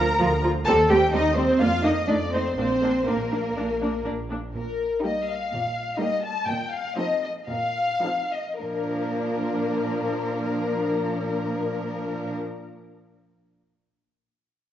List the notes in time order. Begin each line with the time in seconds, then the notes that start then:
Already playing: D2 A#4 A#5
0.20 D2 F3 F4
0.43 F3 F4
0.66 D#2 G3 C4 A4 A5
0.88 G3 C4 G4 G5
1.13 D#2 G3 C4 D#4 D#5
1.36 G3 C4 C5
1.59 F2 A#3 D4 F4 F5
1.82 A#3 D4 D#4 D#5
2.07 F2 A3 D4 D#4 D5
2.31 A3 C4 D#4 C5
2.56 A#1 A#3 C4 D4 C5
2.82 A#3 D4
3.07 A#1 A#3 D4 A#4
3.32 A#3 D4
3.57 A#1 A#3 D4
3.81 A#3 D4
4.05 A#1 A#3 D4
4.30 A#3 D4
4.55 A#2 A#4
5.03 G3 A#3 D#4 G4 D#5
5.29 F5
5.53 A#2
6.00 G3 A#3 D#4 G4 D#5
6.24 A5
6.48 A#2 G5
6.73 F5
6.97 F3 C4 D#4 A4 D#5
7.23 D#5
7.49 A#2 F5
8.03 F3 C4 D#4 A4
8.32 D#5
8.60 A#2 F3 A#3 D4 A#4